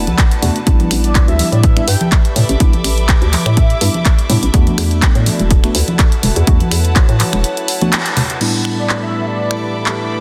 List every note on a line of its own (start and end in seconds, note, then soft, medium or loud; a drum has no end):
0.00 1.80 E4 medium
0.00 0.63 F#4 medium
0.00 0.63 A4 medium
0.00 2.04 B4 medium
0.00 4.50 D5 medium
0.00 1.75 F#5 medium
0.00 2.22 A5 medium
0.07 0.14 D2 loud
0.07 closed hi-hat soft
0.07 high conga loud
0.18 kick loud
0.18 clap loud
0.18 closed hi-hat medium
0.31 closed hi-hat medium
0.42 0.51 E2 medium
0.42 0.58 A3 medium
0.42 0.58 B3 medium
0.42 0.58 D4 medium
0.42 0.58 F#4 loud
0.42 open hi-hat loud
0.42 low conga medium
0.56 closed hi-hat soft
0.66 0.83 A1 loud
0.66 1.73 G3 medium
0.66 1.73 B3 medium
0.66 1.74 D4 medium
0.66 1.74 E4 loud
0.66 4.50 G4 medium
0.66 5.15 A4 medium
0.66 4.50 B4 medium
0.66 kick loud
0.66 closed hi-hat medium
0.80 closed hi-hat soft
0.80 high conga loud
0.91 1.20 A1 medium
0.91 finger snap medium
0.91 open hi-hat loud
1.04 1.24 D5 medium
1.04 closed hi-hat soft
1.10 5.96 E5 medium
1.15 kick loud
1.15 clap loud
1.15 closed hi-hat medium
1.27 1.43 D2 medium
1.27 1.50 E5 medium
1.27 5.93 B5 medium
1.27 closed hi-hat soft
1.39 open hi-hat loud
1.39 high conga medium
1.52 1.81 A2 medium
1.52 1.61 D5 loud
1.52 closed hi-hat soft
1.63 1.85 E5 loud
1.63 kick loud
1.63 closed hi-hat medium
1.76 1.85 G3 medium
1.76 1.85 B3 medium
1.76 1.85 D4 medium
1.76 1.85 E4 medium
1.76 finger snap medium
1.76 closed hi-hat soft
1.88 1.96 G2 loud
1.88 2.09 G5 medium
1.88 open hi-hat loud
2.01 closed hi-hat soft
2.01 high conga medium
2.12 kick loud
2.12 clap loud
2.12 closed hi-hat medium
2.25 closed hi-hat medium
2.36 2.44 A2 medium
2.36 open hi-hat loud
2.36 low conga medium
2.41 5.25 D6 medium
2.49 2.56 A1 loud
2.49 closed hi-hat soft
2.60 2.76 A1 loud
2.60 2.70 G3 loud
2.60 2.70 B3 medium
2.60 2.70 D4 medium
2.60 2.70 E4 loud
2.60 kick loud
2.60 closed hi-hat medium
2.73 closed hi-hat soft
2.73 high conga medium
2.84 3.14 A1 medium
2.84 finger snap medium
2.84 open hi-hat loud
2.98 closed hi-hat soft
3.09 kick loud
3.09 clap loud
3.09 closed hi-hat medium
3.22 3.36 D2 loud
3.22 closed hi-hat soft
3.33 clap medium
3.33 open hi-hat loud
3.33 high conga medium
3.46 3.75 A2 medium
3.46 4.13 E5 medium
3.46 finger snap medium
3.46 closed hi-hat soft
3.57 kick loud
3.57 closed hi-hat medium
3.70 closed hi-hat soft
3.81 3.89 G2 loud
3.81 3.91 G3 medium
3.81 3.91 B3 medium
3.81 3.91 D4 medium
3.81 3.91 E4 medium
3.81 open hi-hat loud
3.94 closed hi-hat soft
3.94 high conga medium
4.05 kick loud
4.05 clap loud
4.05 closed hi-hat medium
4.19 closed hi-hat medium
4.29 4.38 A2 medium
4.29 4.45 G3 medium
4.29 4.45 B3 medium
4.29 4.45 D4 medium
4.29 4.45 E4 loud
4.29 open hi-hat loud
4.29 low conga medium
4.43 4.50 A1 medium
4.43 closed hi-hat medium
4.53 4.70 E2 loud
4.53 5.60 A3 medium
4.53 5.61 B3 medium
4.53 5.61 D4 medium
4.53 9.79 E4 medium
4.53 8.37 F#4 medium
4.53 5.61 F#4 loud
4.53 8.37 A4 medium
4.53 6.45 D5 medium
4.53 kick loud
4.53 closed hi-hat medium
4.67 closed hi-hat soft
4.67 high conga medium
4.73 9.74 B4 medium
4.78 5.08 E2 medium
4.78 finger snap medium
4.78 open hi-hat loud
4.91 closed hi-hat soft
5.02 kick loud
5.02 clap loud
5.02 closed hi-hat medium
5.15 5.30 A2 medium
5.15 9.47 A5 medium
5.15 closed hi-hat soft
5.26 open hi-hat loud
5.26 high conga medium
5.39 5.68 E1 medium
5.39 9.97 F#5 medium
5.39 closed hi-hat soft
5.51 kick loud
5.51 closed hi-hat medium
5.63 5.72 A3 medium
5.63 5.72 B3 medium
5.63 5.72 D4 medium
5.63 5.72 F#4 medium
5.63 finger snap medium
5.63 closed hi-hat soft
5.75 5.83 D2 loud
5.75 open hi-hat loud
5.88 closed hi-hat soft
5.88 high conga medium
5.99 kick loud
5.99 clap loud
5.99 closed hi-hat medium
6.12 closed hi-hat medium
6.23 6.31 E1 medium
6.23 open hi-hat loud
6.23 low conga medium
6.36 6.43 E2 loud
6.36 closed hi-hat medium
6.47 6.63 E2 loud
6.47 6.57 A3 loud
6.47 6.57 B3 medium
6.47 6.57 D4 medium
6.47 6.57 F#4 loud
6.47 8.39 C#5 medium
6.47 kick loud
6.47 closed hi-hat medium
6.60 closed hi-hat soft
6.60 high conga medium
6.71 7.01 E2 medium
6.71 finger snap medium
6.71 open hi-hat loud
6.85 closed hi-hat soft
6.96 kick loud
6.96 clap loud
6.96 closed hi-hat medium
7.09 7.23 A2 loud
7.09 closed hi-hat soft
7.20 clap medium
7.20 open hi-hat loud
7.20 high conga medium
7.33 7.44 E1 medium
7.33 finger snap medium
7.33 closed hi-hat soft
7.44 closed hi-hat medium
7.57 closed hi-hat soft
7.68 open hi-hat loud
7.81 7.95 A3 medium
7.81 7.95 B3 medium
7.81 7.95 D4 medium
7.81 7.95 F#4 medium
7.81 closed hi-hat soft
7.81 high conga medium
7.93 clap loud
7.93 closed hi-hat medium
8.06 closed hi-hat medium
8.17 open hi-hat loud
8.17 low conga loud
8.30 closed hi-hat medium
8.40 10.20 A2 medium
8.40 10.20 G3 medium
8.40 10.20 A3 medium
8.40 10.20 B3 medium
8.40 10.20 D4 medium
8.40 10.20 E4 medium
8.40 10.20 G4 medium
8.40 10.20 A4 medium
8.40 10.20 B4 medium
8.40 10.20 D5 medium
8.40 10.20 B5 medium
8.40 crash medium
8.65 finger snap medium
8.74 10.20 E5 medium
8.78 8.99 D5 medium
8.86 10.20 B5 medium
8.86 clap loud
9.03 9.24 E5 medium
9.27 9.75 D5 medium
9.51 10.20 D6 medium
9.51 finger snap medium
9.86 clap loud